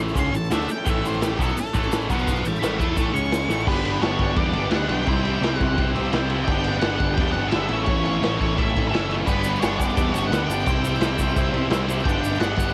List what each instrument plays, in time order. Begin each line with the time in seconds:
Already playing: picked electric bass A1, overdriven electric guitar A2 E3 A3
0.00 transistor combo organ C#4 E4 A4
0.08 shaker
0.14 picked electric bass C#2, overdriven electric guitar C#3 G#3 C#4, kick, open hi-hat, shaker
0.19 transistor combo organ C#4 E4 A4, lead electric guitar C6
0.33 picked electric bass A1, overdriven electric guitar A2 E3, transistor combo organ C#4 E4, lead electric guitar A5, shaker
0.37 transistor combo organ A4
0.44 shaker
0.50 picked electric bass D2, overdriven electric guitar D3 A3 D4, lead electric guitar E5, snare, open hi-hat, shaker
0.56 transistor combo organ C#4 E4 A4
0.61 shaker
0.67 muted picked electric bass stroke, muted overdriven electric guitar stroke, shaker
0.72 transistor combo organ C#4 E4 A4, lead electric guitar G5
0.85 picked electric bass A1, overdriven electric guitar A2 E3 A3, kick, open hi-hat, shaker
0.90 transistor combo organ C#4 E4 A4, lead electric guitar E5
1.05 transistor combo organ C#4 E4 A4, lead electric guitar C5, shaker
1.21 lead electric guitar G4, snare, open hi-hat, shaker
1.26 transistor combo organ C#4 E4 A4
1.39 picked electric bass B1, overdriven electric guitar B2 F#3 B3, transistor combo organ C#4 E4 A4, lead electric guitar A4, kick, shaker
1.56 transistor combo organ C#4 E4 A4, muted picked electric bass stroke, muted overdriven electric guitar stroke, open hi-hat, shaker
1.60 lead electric guitar A4
1.66 shaker
1.74 picked electric bass A1, overdriven electric guitar A2 E3 A3, kick, shaker
1.78 transistor combo organ C#4 E4 A4
1.83 shaker
1.92 transistor combo organ C#4 E4, snare, open hi-hat, shaker
1.96 transistor combo organ A4
2.01 shaker
2.09 picked electric bass B1, overdriven electric guitar B2 F#3 B3, transistor combo organ B3 F#4, lead electric guitar C5 A5, kick, shaker
2.14 transistor combo organ B4
2.19 shaker
2.27 lead electric guitar C5 A5, kick, open hi-hat, shaker
2.44 picked electric bass A1, overdriven electric guitar A2 E3, transistor combo organ E4 A4 C#5, lead electric guitar G5 B5, shaker
2.56 lead electric guitar B5, shaker
2.60 picked electric bass A1, overdriven electric guitar A2 E3 A3, lead electric guitar G5, snare, open hi-hat, shaker
2.77 picked electric bass E2, overdriven electric guitar E3 B3 E4, transistor combo organ E4 A4 C#5, lead electric guitar E5 C#6, kick, shaker
2.93 transistor combo organ E4 A4 C#5, lead electric guitar E5 C#6
2.97 picked electric bass A1, overdriven electric guitar A2 E3 A3, kick, open hi-hat, shaker
3.13 picked electric bass C#2, overdriven electric guitar C#3 G#3 C#4, transistor combo organ C#4 G#4 C#5, lead electric guitar C#6, shaker
3.25 shaker
3.31 snare, open hi-hat, shaker
3.42 shaker
3.48 picked electric bass A1, overdriven electric guitar A2 E3 A3, transistor combo organ E4 A4 C#5, snare, shaker
3.60 shaker
3.65 picked electric bass G1, overdriven electric guitar G2 D3 G3 B3, transistor combo organ D4 G4 B4, lead electric guitar B4, kick, crash
3.69 overdriven electric guitar D4
3.83 overdriven electric guitar B3 D4, transistor combo organ D4 G4 B4, ride
3.87 overdriven electric guitar G3
4.00 picked electric bass G1, overdriven electric guitar D3 G3 B3, transistor combo organ D4 G4, lead electric guitar C#5, snare, ride
4.04 overdriven electric guitar D4, transistor combo organ B4
4.19 picked electric bass G1, transistor combo organ D4 G4 B4, kick, ride
4.35 picked electric bass E2, overdriven electric guitar G2 D3 G3 B3 D4, transistor combo organ D4 G4 B4, lead electric guitar D5, kick, ride
4.53 picked electric bass G1, overdriven electric guitar G3 B3 D4, ride
4.57 transistor combo organ D4 G4 B4
4.70 picked electric bass D2, overdriven electric guitar D3 G3 B3, transistor combo organ D4 G4 B4, lead electric guitar F#5, snare, ride
4.74 overdriven electric guitar D4
4.89 picked electric bass B1, overdriven electric guitar G3 B3 D4, transistor combo organ D4 G4 B4, lead electric guitar G5, ride
5.04 picked electric bass C2, overdriven electric guitar C3 G3 C4, transistor combo organ E4 G4 C5, kick, ride
5.10 overdriven electric guitar E4
5.23 overdriven electric guitar C4 E4, transistor combo organ E4 G4 C5, ride
5.28 overdriven electric guitar G3
5.41 picked electric bass C2, overdriven electric guitar C3 G3 C4 E4, transistor combo organ E4 G4, snare, ride
5.45 transistor combo organ C5
5.57 picked electric bass C2, transistor combo organ E4, lead electric guitar F#5, kick, ride
5.61 transistor combo organ G4 C5
5.78 picked electric bass C2, overdriven electric guitar C3 G3 C4 E4, transistor combo organ E4 G4 C5, kick, ride
5.94 picked electric bass C2, overdriven electric guitar C4 E4, transistor combo organ E4 G4 C5 E5, ride
5.99 overdriven electric guitar G3
6.12 picked electric bass C2, overdriven electric guitar C3 G3 C4 E4, transistor combo organ G4 G5, snare, ride
6.16 transistor combo organ E4 C5
6.29 overdriven electric guitar C4 E4, transistor combo organ E4 G4 C5 A5, ride
6.34 overdriven electric guitar G3
6.45 picked electric bass G1, overdriven electric guitar G2, transistor combo organ D4 G4 B4, lead electric guitar G5, kick, ride
6.49 overdriven electric guitar D3 G3 B3 D4
6.64 overdriven electric guitar D4, transistor combo organ D4 G4, ride
6.68 overdriven electric guitar G3 B3, transistor combo organ B4
6.79 picked electric bass G1, lead electric guitar F#5, snare, ride
6.84 overdriven electric guitar D3 G3 B3 D4, transistor combo organ D4 G4 B4
7.00 picked electric bass G1, transistor combo organ D4 G4 B4, kick, ride
7.14 picked electric bass E2, overdriven electric guitar G2, lead electric guitar G5, kick, ride
7.19 overdriven electric guitar D3 G3 B3 D4, transistor combo organ D4 G4 B4
7.32 picked electric bass G1, overdriven electric guitar D4, lead electric guitar F#5, ride
7.37 overdriven electric guitar G3 B3, transistor combo organ D4 G4 B4
7.48 overdriven electric guitar D3, lead electric guitar E5, ride
7.52 picked electric bass G1, overdriven electric guitar G3 B3 D4, transistor combo organ D4 G4 B4, snare
7.69 picked electric bass A1, overdriven electric guitar A3 C#4 E4, transistor combo organ A4, ride
7.73 overdriven electric guitar A2 E3, transistor combo organ E4 C#5
7.84 picked electric bass A1, overdriven electric guitar A2, lead electric guitar C#5, kick, ride
7.89 overdriven electric guitar E3 A3 C#4 E4
8.04 overdriven electric guitar A3 C#4 E4, transistor combo organ E4 A4 C#5, ride
8.21 picked electric bass A1, overdriven electric guitar E3 A3 C#4, transistor combo organ E4 A4 C#5, snare, ride
8.25 overdriven electric guitar E4
8.38 picked electric bass A1, transistor combo organ A4, lead electric guitar C#5, kick, ride
8.43 transistor combo organ E4 C#5
8.56 picked electric bass A1, overdriven electric guitar A2 E3 A3 C#4 E4, transistor combo organ E4 C#5, lead electric guitar E5, kick, ride
8.61 transistor combo organ A4
8.73 picked electric bass A1, overdriven electric guitar A3 C#4 E4, transistor combo organ E4 A4, kick, ride
8.78 transistor combo organ C#5
8.88 picked electric bass F#1, overdriven electric guitar E3 A3, lead electric guitar E5
8.92 overdriven electric guitar C#4 E4, transistor combo organ E4 A4 C#5, snare, ride
9.07 overdriven electric guitar C#4 E4, transistor combo organ E4 A4 C#5, ride
9.12 overdriven electric guitar A3
9.26 picked electric bass G1, overdriven electric guitar G2 D3 G3 B3 D4, transistor combo organ G4 B4 D5, lead electric guitar B4, kick, crash, shaker
9.44 overdriven electric guitar G3 B3 D4, transistor combo organ G4 B4 D5, ride, shaker
9.55 shaker
9.60 picked electric bass G1, overdriven electric guitar D3 G3 B3 D4, transistor combo organ G4 B4 D5, lead electric guitar C#5, snare, ride, shaker
9.76 picked electric bass G1, lead electric guitar D5, kick, ride
9.81 transistor combo organ G4 B4 D5, shaker
9.90 shaker
9.95 picked electric bass E2, overdriven electric guitar G2 D3 G3 B3 D4, transistor combo organ G4 B4 D5, kick, ride, shaker
10.13 picked electric bass G1, overdriven electric guitar B3 D4, transistor combo organ G4, lead electric guitar C#5, ride, shaker
10.17 overdriven electric guitar G3, transistor combo organ B4 D5
10.27 picked electric bass D2, lead electric guitar F#5
10.32 overdriven electric guitar D3 G3 B3 D4, transistor combo organ G4 B4, snare, ride, shaker
10.36 transistor combo organ D5
10.45 picked electric bass G1, lead electric guitar G5
10.50 overdriven electric guitar G3 B3 D4, transistor combo organ G4, ride, shaker
10.54 transistor combo organ B4 D5
10.59 shaker
10.66 picked electric bass C2, overdriven electric guitar C3 G3 C4 E4, transistor combo organ G4 C5 E5, kick, ride, shaker
10.84 overdriven electric guitar C4 E4, transistor combo organ G4 C5 E5, ride, shaker
10.88 overdriven electric guitar G3
10.95 shaker
11.00 picked electric bass C2, overdriven electric guitar C3 G3, transistor combo organ G4 C5 E5, snare, ride, shaker
11.04 overdriven electric guitar C4 E4
11.18 picked electric bass C2, transistor combo organ G4 C5 E5, kick, ride, shaker
11.29 shaker
11.36 picked electric bass C2, overdriven electric guitar C3 G3 C4 E4, transistor combo organ G4 C5 E5, kick, ride, shaker
11.53 picked electric bass C2, overdriven electric guitar G3 C4 E4, transistor combo organ G4 C5 E5, ride
11.70 picked electric bass C2, overdriven electric guitar C3 G3 C4 E4, transistor combo organ G4 C5 E5, snare, ride, shaker
11.87 overdriven electric guitar G3 C4 E4, transistor combo organ G4 C5 E5, ride, shaker
11.99 shaker
12.04 picked electric bass G1, overdriven electric guitar G2 D3 G3 B3 D4, transistor combo organ G4 B4 D5, lead electric guitar G5, kick, ride
12.09 shaker
12.22 overdriven electric guitar G3 B3 D4, transistor combo organ G4 B4, ride, shaker
12.26 transistor combo organ D5
12.35 shaker
12.40 picked electric bass G1, overdriven electric guitar D3 G3 B3 D4, transistor combo organ G4 B4 D5, lead electric guitar F#5, snare, ride, shaker
12.56 picked electric bass G1, transistor combo organ G4 B4 D5, kick, ride, shaker
12.69 shaker